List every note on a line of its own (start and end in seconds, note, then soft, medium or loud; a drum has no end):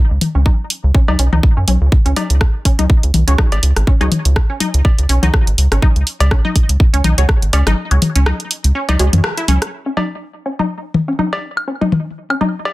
0.11 0.18 C#2 loud
0.21 open hi-hat medium
0.21 mid tom medium
0.35 0.52 C#2 medium
0.35 0.38 C#4 medium
0.46 0.52 D#4 loud
0.46 kick loud
0.46 high tom soft
0.70 open hi-hat medium
0.84 0.92 C#2 medium
0.95 0.99 C#4 medium
0.95 kick loud
1.08 1.16 C#2 medium
1.08 1.13 D#4 loud
1.08 high tom soft
1.08 cowbell medium
1.19 1.29 B1 medium
1.19 1.21 C#4 medium
1.19 open hi-hat medium
1.32 1.40 C#2 medium
1.32 1.35 D#4 loud
1.32 mid tom medium
1.43 kick loud
1.57 1.65 F#2 medium
1.57 1.59 C#4 medium
1.68 1.78 B1 medium
1.68 1.74 C#4 medium
1.68 open hi-hat medium
1.68 high tom soft
1.81 1.89 C#2 loud
1.92 kick loud
2.05 2.13 C#2 loud
2.05 2.09 C#4 medium
2.05 closed hi-hat soft
2.16 2.23 D#4 loud
2.16 open hi-hat medium
2.16 high tom soft
2.16 cowbell medium
2.30 2.47 C#2 medium
2.30 closed hi-hat soft
2.41 kick loud
2.41 cross-stick medium
2.65 2.69 C#4 medium
2.65 kick medium
2.65 open hi-hat medium
2.79 2.87 C#2 medium
2.79 2.84 D#4 loud
2.79 closed hi-hat soft
2.79 high tom soft
2.90 kick loud
3.03 3.11 C#2 medium
3.03 closed hi-hat soft
3.14 3.24 B1 medium
3.14 open hi-hat medium
3.14 mid tom medium
3.27 3.35 C#2 medium
3.27 3.31 C#4 medium
3.27 3.34 F#4 medium
3.27 3.34 G#4 medium
3.27 3.34 C#5 loud
3.27 closed hi-hat soft
3.38 3.44 D#4 medium
3.38 kick loud
3.38 cross-stick medium
3.38 high tom soft
3.52 3.60 G#1 medium
3.52 closed hi-hat soft
3.52 cowbell medium
3.63 3.73 C#2 medium
3.63 open hi-hat medium
3.76 3.84 G#1 medium
3.76 cross-stick medium
3.76 closed hi-hat medium
3.87 3.91 C#4 medium
3.87 kick loud
4.01 4.09 C#2 loud
4.01 4.06 D#4 loud
4.01 4.07 F#4 loud
4.01 4.07 G#4 medium
4.01 4.07 C#5 loud
4.01 closed hi-hat soft
4.01 high tom soft
4.12 open hi-hat medium
4.12 mid tom medium
4.25 4.42 C#2 medium
4.25 closed hi-hat medium
4.36 kick loud
4.36 cross-stick medium
4.50 4.53 C#4 medium
4.60 4.66 D#4 loud
4.60 open hi-hat medium
4.60 high tom soft
4.74 4.82 C#2 medium
4.74 closed hi-hat medium
4.85 kick loud
4.85 cowbell medium
4.98 5.06 C#2 medium
4.98 closed hi-hat soft
5.09 5.19 B1 medium
5.09 5.13 C#4 medium
5.09 open hi-hat medium
5.23 5.31 C#2 medium
5.23 5.28 D#4 loud
5.23 5.29 F#4 medium
5.23 5.29 G#4 medium
5.23 5.29 C#5 loud
5.23 closed hi-hat medium
5.23 mid tom medium
5.23 high tom soft
5.34 kick loud
5.34 cross-stick medium
5.47 5.55 G#1 medium
5.47 closed hi-hat soft
5.58 5.68 C#2 medium
5.58 open hi-hat medium
5.71 5.79 G#1 medium
5.71 5.75 C#4 medium
5.71 cross-stick medium
5.71 closed hi-hat medium
5.82 5.88 D#4 loud
5.82 kick loud
5.82 high tom soft
5.96 6.04 C#2 loud
5.96 closed hi-hat soft
6.07 open hi-hat medium
6.20 6.37 C#2 medium
6.20 closed hi-hat soft
6.20 cowbell medium
6.31 6.35 C#4 medium
6.31 kick loud
6.31 cross-stick medium
6.45 6.49 D#4 loud
6.45 high tom soft
6.56 kick medium
6.56 open hi-hat medium
6.69 6.77 C#2 medium
6.69 closed hi-hat medium
6.80 kick loud
6.93 7.01 C#2 medium
6.93 6.97 C#4 medium
6.93 closed hi-hat soft
7.04 7.14 B1 medium
7.04 7.10 D#4 loud
7.04 open hi-hat medium
7.04 mid tom medium
7.04 high tom soft
7.18 7.26 C#2 medium
7.18 7.24 F#4 medium
7.18 7.24 G#4 medium
7.18 7.24 C#5 loud
7.18 closed hi-hat medium
7.29 kick loud
7.29 cross-stick medium
7.42 7.50 G#1 loud
7.42 closed hi-hat soft
7.53 7.63 C#2 medium
7.53 7.57 C#4 medium
7.53 open hi-hat medium
7.53 cowbell medium
7.66 7.74 G#1 medium
7.66 7.72 D#4 loud
7.66 cross-stick medium
7.66 closed hi-hat medium
7.66 high tom soft
7.91 7.99 C#2 loud
7.91 7.97 F#4 loud
7.91 7.97 G#4 medium
7.91 7.97 C#5 loud
7.91 closed hi-hat soft
8.02 open hi-hat medium
8.02 mid tom medium
8.16 8.32 C#2 medium
8.16 8.19 C#4 medium
8.16 closed hi-hat medium
8.26 8.32 D#4 loud
8.26 cross-stick medium
8.26 high tom soft
8.40 closed hi-hat soft
8.51 open hi-hat medium
8.64 8.72 C#2 medium
8.64 closed hi-hat medium
8.75 8.79 C#4 medium
8.89 8.96 C#2 medium
8.89 8.93 D#4 loud
8.89 closed hi-hat soft
8.89 high tom soft
8.89 cowbell medium
8.99 9.09 C#2 medium
8.99 9.06 G#3 medium
8.99 9.07 F#4 loud
8.99 9.07 G#4 medium
8.99 9.07 C#5 loud
8.99 open hi-hat medium
9.13 9.21 F#2 loud
9.13 closed hi-hat medium
9.13 mid tom medium
9.24 cross-stick medium
9.38 9.41 E4 loud
9.38 closed hi-hat soft
9.48 9.58 C#2 loud
9.48 9.52 C#4 loud
9.48 open hi-hat medium
9.48 high tom soft
9.62 cross-stick medium
9.62 closed hi-hat medium
9.86 9.89 C#4 medium
9.97 10.03 D#4 medium
9.97 high tom soft
9.97 cowbell medium
10.46 10.50 C#4 medium
10.59 10.64 D#4 medium
10.59 high tom soft
10.94 mid tom medium
11.08 11.11 C#4 medium
11.19 11.25 D#4 loud
11.19 high tom soft
11.33 cowbell medium
11.57 high woodblock medium
11.68 11.72 C#4 medium
11.81 11.86 D#4 loud
11.81 high tom soft
11.92 mid tom medium
12.30 12.33 C#4 medium
12.30 high woodblock medium
12.41 12.47 D#4 loud
12.41 high tom soft
12.65 cowbell medium